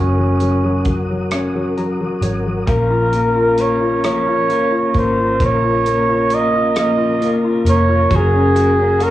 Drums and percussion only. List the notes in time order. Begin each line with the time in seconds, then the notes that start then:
0.40 closed hi-hat
0.85 kick, closed hi-hat
1.31 cross-stick, closed hi-hat
1.78 closed hi-hat
2.22 closed hi-hat
2.67 kick, closed hi-hat
3.13 closed hi-hat
3.58 closed hi-hat
4.04 cross-stick, closed hi-hat
4.50 closed hi-hat
4.94 kick, closed hi-hat
5.40 kick, closed hi-hat
5.86 closed hi-hat
6.30 closed hi-hat
6.76 cross-stick, closed hi-hat
7.22 closed hi-hat
7.66 closed hi-hat
8.11 kick, closed hi-hat
8.56 closed hi-hat
9.00 closed hi-hat